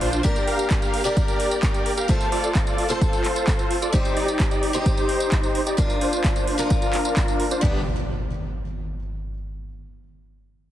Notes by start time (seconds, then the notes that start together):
Already playing: F3 A#3 D4 F4
0.01 A#1 D4 F4 C5, open hi-hat
0.13 closed hi-hat, tambourine
0.23 A#3 D4 G4 A#4 D5, kick, closed hi-hat, tambourine
0.36 closed hi-hat, tambourine
0.47 G4 A#4 F5, open hi-hat
0.59 closed hi-hat, tambourine
0.70 kick, clap, closed hi-hat, tambourine
0.82 G4 A#4 F5, closed hi-hat, tambourine
0.94 open hi-hat
1.04 A#3 D4 G4 A#4 D5, tambourine
1.17 kick, closed hi-hat, tambourine
1.28 G4 A#4 D5, closed hi-hat, tambourine
1.40 open hi-hat
1.51 closed hi-hat, tambourine
1.63 G4 A#4 D5, kick, clap, closed hi-hat, tambourine
1.74 closed hi-hat, tambourine
1.86 open hi-hat
1.97 G4 A#4 F5, closed hi-hat, tambourine
2.08 A3 C4 F4 A4 C5, kick, closed hi-hat, tambourine
2.21 closed hi-hat, tambourine
2.32 F4 A4 D5, open hi-hat
2.44 closed hi-hat, tambourine
2.55 kick, clap, closed hi-hat, tambourine
2.67 F4 A4 D5, closed hi-hat, tambourine
2.78 open hi-hat
2.89 A3 C4 F4 A4 C5, closed hi-hat, tambourine
3.01 kick, closed hi-hat, tambourine
3.13 F4 A4 C5, closed hi-hat, tambourine
3.24 clap, open hi-hat
3.36 closed hi-hat, tambourine
3.47 F4 A4 C5, kick, clap, closed hi-hat, tambourine
3.59 closed hi-hat, tambourine
3.71 open hi-hat
3.82 F4 A4 D5, closed hi-hat, tambourine
3.92 G3 C4 D#4 G4 C5, kick, closed hi-hat, tambourine
4.05 closed hi-hat, tambourine
4.17 D#4 G4 D5, open hi-hat
4.28 closed hi-hat, tambourine
4.40 kick, clap, closed hi-hat, tambourine
4.51 D#4 G4 D5, closed hi-hat, tambourine
4.63 open hi-hat
4.73 G3 C4 D#4 G4 C5, closed hi-hat, tambourine
4.86 kick, closed hi-hat, tambourine
4.97 D#4 G4 C5, closed hi-hat, tambourine
5.09 open hi-hat
5.20 closed hi-hat, tambourine
5.32 D#4 G4 C5, kick, clap, closed hi-hat, tambourine
5.43 closed hi-hat, tambourine
5.55 open hi-hat
5.67 D#4 G4 D5, closed hi-hat, tambourine
5.77 F3 A#3 D4 F4 A#4, kick, closed hi-hat, tambourine
5.90 closed hi-hat, tambourine
6.01 D4 F4 C5, open hi-hat
6.13 closed hi-hat, tambourine
6.24 kick, clap, closed hi-hat, tambourine
6.36 D4 F4 C5, closed hi-hat, tambourine
6.47 open hi-hat
6.58 F3 A#3 D4 F4 A#4, closed hi-hat, tambourine
6.70 kick, closed hi-hat, tambourine
6.82 D4 F4 A#4, closed hi-hat, tambourine
6.93 clap, open hi-hat
7.05 closed hi-hat, tambourine
7.17 D4 F4 A#4, kick, clap, closed hi-hat, tambourine
7.28 closed hi-hat, tambourine
7.40 open hi-hat
7.51 D4 F4 C5, closed hi-hat, tambourine
7.61 G1 G3 B3 D4 G4, kick, impact